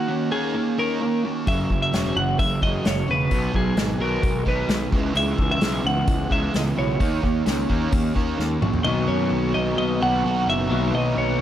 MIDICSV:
0, 0, Header, 1, 6, 480
1, 0, Start_track
1, 0, Tempo, 461538
1, 1528, Time_signature, 4, 2, 24, 8
1, 11871, End_track
2, 0, Start_track
2, 0, Title_t, "Clean electric guitar"
2, 0, Program_c, 0, 27
2, 0, Note_on_c, 0, 66, 65
2, 327, Note_off_c, 0, 66, 0
2, 331, Note_on_c, 0, 68, 73
2, 824, Note_off_c, 0, 68, 0
2, 824, Note_on_c, 0, 70, 82
2, 1262, Note_off_c, 0, 70, 0
2, 1542, Note_on_c, 0, 76, 86
2, 1884, Note_off_c, 0, 76, 0
2, 1897, Note_on_c, 0, 76, 93
2, 2249, Note_off_c, 0, 76, 0
2, 2253, Note_on_c, 0, 78, 76
2, 2473, Note_off_c, 0, 78, 0
2, 2487, Note_on_c, 0, 76, 87
2, 2730, Note_off_c, 0, 76, 0
2, 2734, Note_on_c, 0, 75, 92
2, 2976, Note_off_c, 0, 75, 0
2, 2983, Note_on_c, 0, 73, 86
2, 3220, Note_off_c, 0, 73, 0
2, 3232, Note_on_c, 0, 71, 91
2, 3701, Note_on_c, 0, 68, 73
2, 3711, Note_off_c, 0, 71, 0
2, 4175, Note_on_c, 0, 70, 76
2, 4185, Note_off_c, 0, 68, 0
2, 4614, Note_off_c, 0, 70, 0
2, 4663, Note_on_c, 0, 71, 77
2, 5098, Note_off_c, 0, 71, 0
2, 5376, Note_on_c, 0, 76, 91
2, 5723, Note_off_c, 0, 76, 0
2, 5736, Note_on_c, 0, 76, 96
2, 6096, Note_off_c, 0, 76, 0
2, 6100, Note_on_c, 0, 78, 88
2, 6570, Note_off_c, 0, 78, 0
2, 6574, Note_on_c, 0, 76, 84
2, 6814, Note_off_c, 0, 76, 0
2, 6826, Note_on_c, 0, 75, 83
2, 6887, Note_off_c, 0, 75, 0
2, 7057, Note_on_c, 0, 73, 81
2, 8929, Note_off_c, 0, 73, 0
2, 9199, Note_on_c, 0, 75, 92
2, 9424, Note_off_c, 0, 75, 0
2, 9441, Note_on_c, 0, 73, 81
2, 9925, Note_on_c, 0, 75, 74
2, 9938, Note_off_c, 0, 73, 0
2, 10160, Note_off_c, 0, 75, 0
2, 10173, Note_on_c, 0, 75, 93
2, 10393, Note_off_c, 0, 75, 0
2, 10426, Note_on_c, 0, 78, 110
2, 10911, Note_off_c, 0, 78, 0
2, 10915, Note_on_c, 0, 76, 98
2, 11381, Note_off_c, 0, 76, 0
2, 11386, Note_on_c, 0, 75, 82
2, 11625, Note_off_c, 0, 75, 0
2, 11628, Note_on_c, 0, 73, 81
2, 11866, Note_off_c, 0, 73, 0
2, 11871, End_track
3, 0, Start_track
3, 0, Title_t, "Clean electric guitar"
3, 0, Program_c, 1, 27
3, 0, Note_on_c, 1, 51, 70
3, 92, Note_on_c, 1, 61, 57
3, 315, Note_off_c, 1, 51, 0
3, 327, Note_on_c, 1, 51, 56
3, 563, Note_on_c, 1, 58, 56
3, 797, Note_off_c, 1, 61, 0
3, 810, Note_on_c, 1, 61, 56
3, 1031, Note_off_c, 1, 58, 0
3, 1043, Note_on_c, 1, 58, 66
3, 1276, Note_on_c, 1, 66, 62
3, 1517, Note_on_c, 1, 42, 66
3, 1525, Note_off_c, 1, 58, 0
3, 1527, Note_off_c, 1, 51, 0
3, 1528, Note_off_c, 1, 61, 0
3, 2002, Note_on_c, 1, 61, 59
3, 2239, Note_on_c, 1, 52, 57
3, 2270, Note_off_c, 1, 66, 0
3, 2476, Note_on_c, 1, 58, 59
3, 2702, Note_off_c, 1, 61, 0
3, 2714, Note_on_c, 1, 61, 54
3, 2719, Note_off_c, 1, 42, 0
3, 2942, Note_off_c, 1, 58, 0
3, 2955, Note_on_c, 1, 58, 67
3, 3185, Note_on_c, 1, 66, 70
3, 3431, Note_on_c, 1, 47, 66
3, 3434, Note_off_c, 1, 66, 0
3, 3438, Note_off_c, 1, 58, 0
3, 3438, Note_off_c, 1, 61, 0
3, 3440, Note_off_c, 1, 52, 0
3, 3916, Note_on_c, 1, 63, 61
3, 4147, Note_on_c, 1, 51, 59
3, 4389, Note_on_c, 1, 56, 58
3, 4617, Note_off_c, 1, 63, 0
3, 4630, Note_on_c, 1, 63, 60
3, 4635, Note_off_c, 1, 47, 0
3, 4855, Note_off_c, 1, 56, 0
3, 4868, Note_on_c, 1, 56, 72
3, 5111, Note_on_c, 1, 49, 61
3, 5113, Note_off_c, 1, 51, 0
3, 5114, Note_off_c, 1, 56, 0
3, 5115, Note_off_c, 1, 63, 0
3, 5335, Note_off_c, 1, 49, 0
3, 5348, Note_on_c, 1, 49, 61
3, 5839, Note_on_c, 1, 59, 65
3, 6075, Note_on_c, 1, 52, 59
3, 6319, Note_on_c, 1, 56, 65
3, 6553, Note_off_c, 1, 49, 0
3, 6558, Note_off_c, 1, 59, 0
3, 6570, Note_on_c, 1, 59, 55
3, 6791, Note_off_c, 1, 56, 0
3, 6804, Note_on_c, 1, 56, 70
3, 7042, Note_on_c, 1, 64, 69
3, 7278, Note_off_c, 1, 52, 0
3, 7281, Note_off_c, 1, 64, 0
3, 7282, Note_off_c, 1, 56, 0
3, 7282, Note_on_c, 1, 51, 69
3, 7285, Note_off_c, 1, 59, 0
3, 7758, Note_on_c, 1, 61, 64
3, 7989, Note_off_c, 1, 51, 0
3, 8002, Note_on_c, 1, 51, 56
3, 8230, Note_on_c, 1, 58, 64
3, 8474, Note_off_c, 1, 61, 0
3, 8486, Note_on_c, 1, 61, 54
3, 8716, Note_off_c, 1, 58, 0
3, 8728, Note_on_c, 1, 58, 65
3, 8958, Note_on_c, 1, 66, 71
3, 9188, Note_off_c, 1, 51, 0
3, 9192, Note_on_c, 1, 47, 78
3, 9194, Note_off_c, 1, 58, 0
3, 9201, Note_off_c, 1, 66, 0
3, 9201, Note_on_c, 1, 51, 85
3, 9205, Note_off_c, 1, 61, 0
3, 9207, Note_on_c, 1, 58, 78
3, 9213, Note_on_c, 1, 59, 82
3, 9219, Note_on_c, 1, 66, 97
3, 10150, Note_off_c, 1, 51, 0
3, 10153, Note_off_c, 1, 47, 0
3, 10157, Note_on_c, 1, 47, 62
3, 10160, Note_on_c, 1, 51, 65
3, 10165, Note_off_c, 1, 58, 0
3, 10169, Note_on_c, 1, 58, 73
3, 10174, Note_off_c, 1, 59, 0
3, 10178, Note_on_c, 1, 59, 71
3, 10180, Note_off_c, 1, 66, 0
3, 10184, Note_on_c, 1, 66, 80
3, 11102, Note_off_c, 1, 47, 0
3, 11111, Note_off_c, 1, 51, 0
3, 11114, Note_on_c, 1, 47, 80
3, 11120, Note_off_c, 1, 59, 0
3, 11125, Note_on_c, 1, 51, 82
3, 11128, Note_off_c, 1, 58, 0
3, 11132, Note_on_c, 1, 58, 92
3, 11137, Note_on_c, 1, 59, 93
3, 11141, Note_off_c, 1, 66, 0
3, 11145, Note_on_c, 1, 66, 99
3, 11871, Note_off_c, 1, 47, 0
3, 11871, Note_off_c, 1, 51, 0
3, 11871, Note_off_c, 1, 58, 0
3, 11871, Note_off_c, 1, 59, 0
3, 11871, Note_off_c, 1, 66, 0
3, 11871, End_track
4, 0, Start_track
4, 0, Title_t, "Distorted electric guitar"
4, 0, Program_c, 2, 30
4, 87, Note_on_c, 2, 51, 63
4, 90, Note_on_c, 2, 58, 81
4, 304, Note_off_c, 2, 51, 0
4, 305, Note_off_c, 2, 58, 0
4, 326, Note_on_c, 2, 51, 72
4, 328, Note_on_c, 2, 58, 74
4, 334, Note_on_c, 2, 63, 80
4, 553, Note_off_c, 2, 51, 0
4, 554, Note_off_c, 2, 58, 0
4, 557, Note_off_c, 2, 63, 0
4, 569, Note_on_c, 2, 51, 61
4, 574, Note_on_c, 2, 58, 65
4, 785, Note_off_c, 2, 51, 0
4, 787, Note_off_c, 2, 58, 0
4, 809, Note_on_c, 2, 51, 75
4, 813, Note_on_c, 2, 58, 95
4, 817, Note_on_c, 2, 63, 94
4, 1034, Note_off_c, 2, 51, 0
4, 1036, Note_off_c, 2, 58, 0
4, 1038, Note_off_c, 2, 63, 0
4, 1052, Note_on_c, 2, 51, 70
4, 1055, Note_on_c, 2, 58, 80
4, 1266, Note_off_c, 2, 51, 0
4, 1267, Note_off_c, 2, 58, 0
4, 1296, Note_on_c, 2, 51, 63
4, 1297, Note_on_c, 2, 58, 63
4, 1508, Note_off_c, 2, 51, 0
4, 1508, Note_off_c, 2, 58, 0
4, 1532, Note_on_c, 2, 42, 71
4, 1537, Note_on_c, 2, 49, 81
4, 1541, Note_on_c, 2, 54, 87
4, 1755, Note_off_c, 2, 42, 0
4, 1757, Note_off_c, 2, 49, 0
4, 1759, Note_off_c, 2, 54, 0
4, 1772, Note_on_c, 2, 42, 62
4, 1774, Note_on_c, 2, 49, 58
4, 1985, Note_off_c, 2, 42, 0
4, 1986, Note_off_c, 2, 49, 0
4, 2001, Note_on_c, 2, 42, 80
4, 2006, Note_on_c, 2, 49, 84
4, 2009, Note_on_c, 2, 54, 88
4, 2229, Note_off_c, 2, 42, 0
4, 2231, Note_off_c, 2, 49, 0
4, 2233, Note_off_c, 2, 54, 0
4, 2250, Note_on_c, 2, 42, 60
4, 2252, Note_on_c, 2, 49, 60
4, 2463, Note_off_c, 2, 42, 0
4, 2464, Note_off_c, 2, 49, 0
4, 2490, Note_on_c, 2, 42, 67
4, 2496, Note_on_c, 2, 49, 72
4, 2703, Note_off_c, 2, 42, 0
4, 2706, Note_off_c, 2, 49, 0
4, 2727, Note_on_c, 2, 42, 75
4, 2732, Note_on_c, 2, 49, 80
4, 2738, Note_on_c, 2, 54, 96
4, 2951, Note_off_c, 2, 42, 0
4, 2954, Note_off_c, 2, 49, 0
4, 2957, Note_off_c, 2, 54, 0
4, 2967, Note_on_c, 2, 42, 68
4, 2969, Note_on_c, 2, 49, 75
4, 3181, Note_off_c, 2, 42, 0
4, 3182, Note_off_c, 2, 49, 0
4, 3204, Note_on_c, 2, 42, 63
4, 3208, Note_on_c, 2, 49, 64
4, 3419, Note_off_c, 2, 42, 0
4, 3421, Note_off_c, 2, 49, 0
4, 3445, Note_on_c, 2, 47, 72
4, 3449, Note_on_c, 2, 54, 81
4, 3450, Note_on_c, 2, 59, 96
4, 3669, Note_off_c, 2, 47, 0
4, 3671, Note_off_c, 2, 54, 0
4, 3672, Note_off_c, 2, 59, 0
4, 3685, Note_on_c, 2, 47, 57
4, 3694, Note_on_c, 2, 54, 61
4, 3900, Note_off_c, 2, 47, 0
4, 3904, Note_off_c, 2, 54, 0
4, 3925, Note_on_c, 2, 47, 72
4, 3934, Note_on_c, 2, 54, 72
4, 4139, Note_off_c, 2, 47, 0
4, 4144, Note_off_c, 2, 54, 0
4, 4163, Note_on_c, 2, 47, 77
4, 4166, Note_on_c, 2, 54, 86
4, 4168, Note_on_c, 2, 59, 86
4, 4383, Note_off_c, 2, 47, 0
4, 4383, Note_off_c, 2, 54, 0
4, 4390, Note_off_c, 2, 59, 0
4, 4395, Note_on_c, 2, 47, 57
4, 4396, Note_on_c, 2, 54, 70
4, 4614, Note_off_c, 2, 47, 0
4, 4614, Note_off_c, 2, 54, 0
4, 4637, Note_on_c, 2, 47, 80
4, 4639, Note_on_c, 2, 54, 85
4, 4643, Note_on_c, 2, 59, 104
4, 4864, Note_off_c, 2, 47, 0
4, 4865, Note_off_c, 2, 54, 0
4, 4867, Note_off_c, 2, 59, 0
4, 4881, Note_on_c, 2, 47, 78
4, 4883, Note_on_c, 2, 54, 77
4, 5097, Note_off_c, 2, 47, 0
4, 5097, Note_off_c, 2, 54, 0
4, 5120, Note_on_c, 2, 49, 73
4, 5126, Note_on_c, 2, 52, 86
4, 5129, Note_on_c, 2, 56, 83
4, 5340, Note_off_c, 2, 49, 0
4, 5344, Note_off_c, 2, 52, 0
4, 5350, Note_off_c, 2, 56, 0
4, 5352, Note_on_c, 2, 49, 78
4, 5357, Note_on_c, 2, 52, 82
4, 5362, Note_on_c, 2, 56, 86
4, 5581, Note_off_c, 2, 49, 0
4, 5584, Note_off_c, 2, 52, 0
4, 5586, Note_off_c, 2, 56, 0
4, 5592, Note_on_c, 2, 49, 59
4, 5597, Note_on_c, 2, 52, 62
4, 5812, Note_off_c, 2, 49, 0
4, 5814, Note_off_c, 2, 52, 0
4, 5834, Note_on_c, 2, 49, 80
4, 5841, Note_on_c, 2, 52, 73
4, 5844, Note_on_c, 2, 56, 85
4, 6062, Note_off_c, 2, 49, 0
4, 6066, Note_off_c, 2, 52, 0
4, 6067, Note_off_c, 2, 56, 0
4, 6075, Note_on_c, 2, 49, 67
4, 6081, Note_on_c, 2, 52, 70
4, 6293, Note_off_c, 2, 49, 0
4, 6296, Note_off_c, 2, 52, 0
4, 6317, Note_on_c, 2, 49, 55
4, 6320, Note_on_c, 2, 52, 77
4, 6534, Note_off_c, 2, 49, 0
4, 6536, Note_off_c, 2, 52, 0
4, 6546, Note_on_c, 2, 49, 84
4, 6550, Note_on_c, 2, 52, 95
4, 6552, Note_on_c, 2, 56, 94
4, 6771, Note_off_c, 2, 49, 0
4, 6781, Note_off_c, 2, 52, 0
4, 6782, Note_off_c, 2, 56, 0
4, 6783, Note_on_c, 2, 49, 72
4, 6793, Note_on_c, 2, 52, 84
4, 7007, Note_off_c, 2, 49, 0
4, 7013, Note_off_c, 2, 52, 0
4, 7025, Note_on_c, 2, 49, 65
4, 7031, Note_on_c, 2, 52, 68
4, 7248, Note_off_c, 2, 49, 0
4, 7251, Note_off_c, 2, 52, 0
4, 7273, Note_on_c, 2, 51, 85
4, 7278, Note_on_c, 2, 58, 75
4, 7280, Note_on_c, 2, 63, 96
4, 7502, Note_off_c, 2, 51, 0
4, 7505, Note_off_c, 2, 58, 0
4, 7505, Note_off_c, 2, 63, 0
4, 7515, Note_on_c, 2, 51, 55
4, 7516, Note_on_c, 2, 58, 62
4, 7734, Note_off_c, 2, 51, 0
4, 7734, Note_off_c, 2, 58, 0
4, 7758, Note_on_c, 2, 51, 62
4, 7759, Note_on_c, 2, 58, 66
4, 7975, Note_off_c, 2, 51, 0
4, 7976, Note_off_c, 2, 58, 0
4, 7996, Note_on_c, 2, 51, 70
4, 8002, Note_on_c, 2, 58, 85
4, 8005, Note_on_c, 2, 63, 75
4, 8219, Note_off_c, 2, 51, 0
4, 8223, Note_off_c, 2, 58, 0
4, 8228, Note_off_c, 2, 63, 0
4, 8232, Note_on_c, 2, 51, 65
4, 8236, Note_on_c, 2, 58, 64
4, 8453, Note_off_c, 2, 51, 0
4, 8455, Note_off_c, 2, 58, 0
4, 8472, Note_on_c, 2, 51, 84
4, 8481, Note_on_c, 2, 58, 75
4, 8483, Note_on_c, 2, 63, 83
4, 8702, Note_off_c, 2, 51, 0
4, 8707, Note_off_c, 2, 58, 0
4, 8708, Note_off_c, 2, 63, 0
4, 8720, Note_on_c, 2, 51, 68
4, 8722, Note_on_c, 2, 58, 73
4, 8937, Note_off_c, 2, 51, 0
4, 8938, Note_off_c, 2, 58, 0
4, 8966, Note_on_c, 2, 51, 51
4, 8969, Note_on_c, 2, 58, 65
4, 9181, Note_off_c, 2, 51, 0
4, 9182, Note_off_c, 2, 58, 0
4, 9196, Note_on_c, 2, 47, 78
4, 9205, Note_on_c, 2, 54, 79
4, 9214, Note_on_c, 2, 63, 79
4, 9219, Note_on_c, 2, 66, 88
4, 10388, Note_off_c, 2, 47, 0
4, 10397, Note_off_c, 2, 63, 0
4, 10403, Note_off_c, 2, 66, 0
4, 10407, Note_on_c, 2, 66, 87
4, 10411, Note_on_c, 2, 63, 65
4, 10415, Note_off_c, 2, 54, 0
4, 10418, Note_on_c, 2, 59, 71
4, 10419, Note_on_c, 2, 54, 68
4, 10426, Note_on_c, 2, 47, 61
4, 10631, Note_off_c, 2, 47, 0
4, 10635, Note_off_c, 2, 63, 0
4, 10638, Note_off_c, 2, 59, 0
4, 10644, Note_off_c, 2, 54, 0
4, 10644, Note_on_c, 2, 47, 74
4, 10648, Note_on_c, 2, 54, 75
4, 10657, Note_off_c, 2, 66, 0
4, 10658, Note_on_c, 2, 63, 90
4, 10661, Note_on_c, 2, 66, 82
4, 11112, Note_off_c, 2, 47, 0
4, 11119, Note_off_c, 2, 63, 0
4, 11123, Note_on_c, 2, 47, 83
4, 11125, Note_off_c, 2, 54, 0
4, 11129, Note_on_c, 2, 54, 76
4, 11140, Note_on_c, 2, 63, 87
4, 11142, Note_off_c, 2, 66, 0
4, 11147, Note_on_c, 2, 66, 83
4, 11871, Note_off_c, 2, 47, 0
4, 11871, Note_off_c, 2, 54, 0
4, 11871, Note_off_c, 2, 63, 0
4, 11871, Note_off_c, 2, 66, 0
4, 11871, End_track
5, 0, Start_track
5, 0, Title_t, "Picked electric bass"
5, 0, Program_c, 3, 34
5, 1529, Note_on_c, 3, 30, 78
5, 1709, Note_off_c, 3, 30, 0
5, 1770, Note_on_c, 3, 30, 72
5, 1949, Note_off_c, 3, 30, 0
5, 2014, Note_on_c, 3, 28, 72
5, 2192, Note_off_c, 3, 28, 0
5, 2248, Note_on_c, 3, 30, 86
5, 2428, Note_off_c, 3, 30, 0
5, 2489, Note_on_c, 3, 30, 76
5, 2668, Note_off_c, 3, 30, 0
5, 2726, Note_on_c, 3, 30, 70
5, 2906, Note_off_c, 3, 30, 0
5, 2973, Note_on_c, 3, 30, 81
5, 3150, Note_off_c, 3, 30, 0
5, 3208, Note_on_c, 3, 28, 87
5, 3387, Note_off_c, 3, 28, 0
5, 3444, Note_on_c, 3, 35, 82
5, 3624, Note_off_c, 3, 35, 0
5, 3682, Note_on_c, 3, 35, 86
5, 3863, Note_off_c, 3, 35, 0
5, 3919, Note_on_c, 3, 32, 84
5, 4101, Note_off_c, 3, 32, 0
5, 4158, Note_on_c, 3, 35, 89
5, 4340, Note_off_c, 3, 35, 0
5, 4403, Note_on_c, 3, 35, 70
5, 4583, Note_off_c, 3, 35, 0
5, 4642, Note_on_c, 3, 35, 69
5, 4822, Note_off_c, 3, 35, 0
5, 4874, Note_on_c, 3, 35, 74
5, 5057, Note_off_c, 3, 35, 0
5, 5118, Note_on_c, 3, 37, 83
5, 5299, Note_off_c, 3, 37, 0
5, 5356, Note_on_c, 3, 37, 73
5, 5538, Note_off_c, 3, 37, 0
5, 5601, Note_on_c, 3, 37, 85
5, 5781, Note_off_c, 3, 37, 0
5, 5843, Note_on_c, 3, 35, 83
5, 6022, Note_off_c, 3, 35, 0
5, 6078, Note_on_c, 3, 37, 81
5, 6260, Note_off_c, 3, 37, 0
5, 6318, Note_on_c, 3, 37, 82
5, 6500, Note_off_c, 3, 37, 0
5, 6557, Note_on_c, 3, 37, 69
5, 6739, Note_off_c, 3, 37, 0
5, 6812, Note_on_c, 3, 37, 74
5, 6988, Note_off_c, 3, 37, 0
5, 7049, Note_on_c, 3, 35, 84
5, 7226, Note_off_c, 3, 35, 0
5, 7287, Note_on_c, 3, 39, 82
5, 7465, Note_off_c, 3, 39, 0
5, 7525, Note_on_c, 3, 39, 73
5, 7704, Note_off_c, 3, 39, 0
5, 7764, Note_on_c, 3, 37, 81
5, 7943, Note_off_c, 3, 37, 0
5, 8003, Note_on_c, 3, 39, 83
5, 8183, Note_off_c, 3, 39, 0
5, 8245, Note_on_c, 3, 39, 76
5, 8425, Note_off_c, 3, 39, 0
5, 8482, Note_on_c, 3, 39, 77
5, 8663, Note_off_c, 3, 39, 0
5, 8723, Note_on_c, 3, 39, 71
5, 8904, Note_off_c, 3, 39, 0
5, 8967, Note_on_c, 3, 34, 84
5, 9146, Note_off_c, 3, 34, 0
5, 9204, Note_on_c, 3, 35, 75
5, 9424, Note_off_c, 3, 35, 0
5, 9446, Note_on_c, 3, 42, 75
5, 9665, Note_off_c, 3, 42, 0
5, 9692, Note_on_c, 3, 35, 76
5, 9909, Note_off_c, 3, 35, 0
5, 9937, Note_on_c, 3, 35, 87
5, 10152, Note_off_c, 3, 35, 0
5, 10165, Note_on_c, 3, 35, 72
5, 10386, Note_off_c, 3, 35, 0
5, 10419, Note_on_c, 3, 35, 71
5, 10633, Note_off_c, 3, 35, 0
5, 10659, Note_on_c, 3, 35, 82
5, 10874, Note_off_c, 3, 35, 0
5, 10893, Note_on_c, 3, 30, 86
5, 11111, Note_off_c, 3, 30, 0
5, 11135, Note_on_c, 3, 35, 84
5, 11353, Note_off_c, 3, 35, 0
5, 11378, Note_on_c, 3, 35, 82
5, 11594, Note_off_c, 3, 35, 0
5, 11607, Note_on_c, 3, 35, 76
5, 11829, Note_off_c, 3, 35, 0
5, 11871, End_track
6, 0, Start_track
6, 0, Title_t, "Drums"
6, 1529, Note_on_c, 9, 46, 43
6, 1532, Note_on_c, 9, 36, 96
6, 1633, Note_off_c, 9, 46, 0
6, 1636, Note_off_c, 9, 36, 0
6, 1770, Note_on_c, 9, 36, 67
6, 1874, Note_off_c, 9, 36, 0
6, 2011, Note_on_c, 9, 46, 42
6, 2018, Note_on_c, 9, 38, 96
6, 2115, Note_off_c, 9, 46, 0
6, 2122, Note_off_c, 9, 38, 0
6, 2489, Note_on_c, 9, 36, 99
6, 2489, Note_on_c, 9, 46, 48
6, 2593, Note_off_c, 9, 36, 0
6, 2593, Note_off_c, 9, 46, 0
6, 2727, Note_on_c, 9, 36, 76
6, 2831, Note_off_c, 9, 36, 0
6, 2965, Note_on_c, 9, 46, 42
6, 2973, Note_on_c, 9, 38, 98
6, 3069, Note_off_c, 9, 46, 0
6, 3077, Note_off_c, 9, 38, 0
6, 3442, Note_on_c, 9, 46, 46
6, 3445, Note_on_c, 9, 36, 85
6, 3546, Note_off_c, 9, 46, 0
6, 3549, Note_off_c, 9, 36, 0
6, 3684, Note_on_c, 9, 36, 67
6, 3788, Note_off_c, 9, 36, 0
6, 3921, Note_on_c, 9, 46, 46
6, 3928, Note_on_c, 9, 38, 105
6, 4025, Note_off_c, 9, 46, 0
6, 4032, Note_off_c, 9, 38, 0
6, 4402, Note_on_c, 9, 36, 115
6, 4403, Note_on_c, 9, 46, 51
6, 4506, Note_off_c, 9, 36, 0
6, 4507, Note_off_c, 9, 46, 0
6, 4642, Note_on_c, 9, 36, 70
6, 4746, Note_off_c, 9, 36, 0
6, 4877, Note_on_c, 9, 46, 38
6, 4884, Note_on_c, 9, 38, 93
6, 4981, Note_off_c, 9, 46, 0
6, 4988, Note_off_c, 9, 38, 0
6, 5122, Note_on_c, 9, 36, 98
6, 5226, Note_off_c, 9, 36, 0
6, 5360, Note_on_c, 9, 46, 48
6, 5464, Note_off_c, 9, 46, 0
6, 5600, Note_on_c, 9, 36, 82
6, 5704, Note_off_c, 9, 36, 0
6, 5837, Note_on_c, 9, 46, 47
6, 5844, Note_on_c, 9, 38, 103
6, 5941, Note_off_c, 9, 46, 0
6, 5948, Note_off_c, 9, 38, 0
6, 6318, Note_on_c, 9, 46, 48
6, 6321, Note_on_c, 9, 36, 115
6, 6422, Note_off_c, 9, 46, 0
6, 6425, Note_off_c, 9, 36, 0
6, 6562, Note_on_c, 9, 36, 72
6, 6666, Note_off_c, 9, 36, 0
6, 6803, Note_on_c, 9, 46, 40
6, 6811, Note_on_c, 9, 38, 88
6, 6907, Note_off_c, 9, 46, 0
6, 6915, Note_off_c, 9, 38, 0
6, 7284, Note_on_c, 9, 36, 96
6, 7286, Note_on_c, 9, 46, 47
6, 7388, Note_off_c, 9, 36, 0
6, 7390, Note_off_c, 9, 46, 0
6, 7523, Note_on_c, 9, 36, 68
6, 7627, Note_off_c, 9, 36, 0
6, 7763, Note_on_c, 9, 46, 49
6, 7770, Note_on_c, 9, 38, 100
6, 7867, Note_off_c, 9, 46, 0
6, 7874, Note_off_c, 9, 38, 0
6, 8004, Note_on_c, 9, 36, 65
6, 8108, Note_off_c, 9, 36, 0
6, 8242, Note_on_c, 9, 46, 55
6, 8245, Note_on_c, 9, 36, 108
6, 8346, Note_off_c, 9, 46, 0
6, 8349, Note_off_c, 9, 36, 0
6, 8485, Note_on_c, 9, 36, 68
6, 8589, Note_off_c, 9, 36, 0
6, 8731, Note_on_c, 9, 38, 47
6, 8835, Note_off_c, 9, 38, 0
6, 8968, Note_on_c, 9, 45, 81
6, 9072, Note_off_c, 9, 45, 0
6, 9084, Note_on_c, 9, 43, 72
6, 9188, Note_off_c, 9, 43, 0
6, 11871, End_track
0, 0, End_of_file